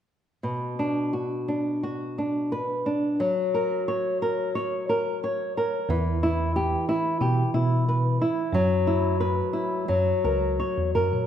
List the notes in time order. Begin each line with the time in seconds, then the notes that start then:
0.43 B2
0.79 D4
1.13 F#4
1.48 D4
1.83 F#4
2.18 D4
2.52 B4
2.86 D4
3.20 F#3
3.54 A#4
3.88 C#5
4.22 A#4
4.55 C#5
4.89 A#4
5.24 C#5
5.57 A#4
5.89 E2 E3
6.23 E4
6.56 G4
6.89 E4
7.21 B2 G4
7.54 B2 E4
7.88 B4
8.21 E4
8.53 F#2 F#3
8.87 E4
9.20 B4
9.53 E4
9.88 F#2 F#3
10.24 C#2 A#4
10.60 C#5
10.78 E2
10.95 F#2 A#4
11.13 A#2